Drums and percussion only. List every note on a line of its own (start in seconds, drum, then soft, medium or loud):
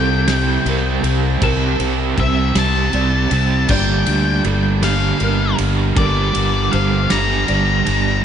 0.28 snare loud
0.28 ride loud
0.66 ride medium
1.04 ride medium
1.42 kick loud
1.42 ride loud
1.80 ride medium
2.18 kick medium
2.18 ride medium
2.55 snare loud
2.55 ride loud
2.93 ride medium
3.31 ride medium
3.69 kick loud
3.69 crash loud
4.06 ride medium
4.44 ride medium
4.83 snare loud
4.83 ride loud
5.20 ride medium
5.58 ride medium
5.97 kick loud
5.97 ride loud
6.35 ride medium
6.73 ride medium
7.10 snare loud
7.10 ride loud
7.48 ride medium
7.86 ride medium